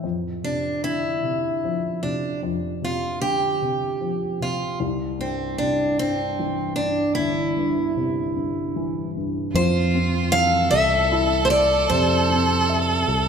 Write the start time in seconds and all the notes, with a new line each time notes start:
0.03 F2
0.43 C3 D4
0.84 D3 E4
1.23 C3
1.64 F3
2.03 C3 D4
2.43 F2
2.82 C3 F4
3.21 D3 G4
3.62 C3
4.01 F3
4.40 C3 F4
4.80 C2
5.19 G2 C4
5.58 C3 D4
5.99 G2 C4
6.39 E3
6.76 G2 D4
7.15 G1 E4
7.57 G2
7.97 C3
8.36 G2
8.76 E3
9.17 G2
9.53 F2 F3 F4 C5
9.95 C4
10.32 E3 A4 F5
10.71 C2 A4 E5
11.12 E4
11.45 C5
11.50 A4 D5
11.90 F2 C3 C5
12.30 C4
12.69 E5
13.08 C2 A4